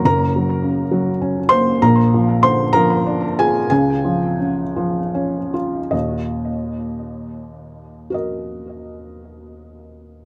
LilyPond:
<<
  \new Staff \with { instrumentName = "Felt piano" } { \time 6/8 \key ees \dorian \tempo 4. = 56 << { <bes' bes''>2~ <bes' bes''>8 <c'' c'''>8 | <bes' bes''>4 <c'' c'''>8 <bes' bes''>4 <aes' aes''>8 | <aes' aes''>2~ <aes' aes''>8 r8 | ees''2.~ |
ees''2. | } \\ { r2. | r2. | r2. | r2. |
<ges' bes' ees''>2. | } >> }
  \new Staff \with { instrumentName = "Felt piano" } { \clef bass \time 6/8 \key ees \dorian <ges,, ges,>8 ges8 des8 ges8 des'8 bes8 | <bes,, bes,>8 f8 d8 f8 d'8 f'8 | <des, des>8 f8 des8 f8 des'8 f'8 | <ees, bes,>2.~ |
<ees, bes,>2. | }
>>